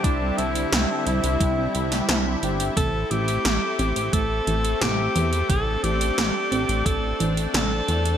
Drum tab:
HH |x-xxx-xxx-xxx-xx|x-xxx-xxx-xxx-xx|x-xxx-xxx-xxx-xx|
SD |----o------oo---|----o-------o---|----o-------o---|
BD |o-------o-------|o-------o-------|o-------o-------|